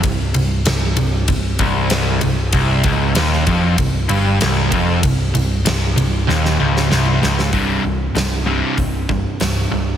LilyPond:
<<
  \new Staff \with { instrumentName = "Distorted electric guitar" } { \clef bass \time 4/4 \key c \minor \tempo 4 = 96 c,8 c,8 c,8 c,8 c,8 c,4 c,8 | c,8 des,8 ees,8 f,8 c,8 g,8 c,8 f,8 | c,8 c,8 c,8 c,8 ees,8 des,8 c,8 des,8 | <c, g, c>8 <c, g,>8 <c, g,>8 <c, g, c>8 <c, g,>8 <c, g,>8 <c, g,>8 <c, g,>8 | }
  \new Staff \with { instrumentName = "Overdriven electric guitar" } { \clef bass \time 4/4 \key c \minor c,8 c,8 c,8 c,8 c,8 c,4 c,8 | c,8 des,8 ees,8 f,8 c,8 g,8 c,8 f,8 | c,8 c,8 c,8 c,8 ees,8 des,8 c,8 des,8 | <c, g, c>8 <c, g,>8 <c, g,>8 <c, g, c>8 <c, g,>8 <c, g,>8 <c, g,>8 <c, g,>8 | }
  \new Staff \with { instrumentName = "Picked electric bass" } { \clef bass \time 4/4 \key c \minor c,,8 c,,8 c,,8 c,,8 c,,8 c,,4 c,,8 | c,,8 des,,8 ees,,8 f,,8 c,,8 g,,8 c,,8 f,,8 | c,,8 c,,8 c,,8 c,,8 ees,,8 des,,8 c,,8 des,,8 | c,,8 c,,8 c,,4 c,,4 c,,8 c,,8 | }
  \new DrumStaff \with { instrumentName = "Drums" } \drummode { \time 4/4 <bd cymr>8 cymr8 <cymr sn>8 cymr8 <bd cymr>8 <bd cymr>8 <cymr sn>8 cymr8 | <bd cymr>8 <bd cymr>8 <cymr sn>16 sn16 <bd cymr>8 <bd cymr>8 cymr8 <cymr sn>8 <bd cymr>8 | <bd cymr>8 cymr8 <cymr sn>8 cymr8 sn16 sn8 sn16 sn8 sn16 sn16 | <hho bd>4 <hho sn>4 <hho bd>8 bd8 <hho sn>4 | }
>>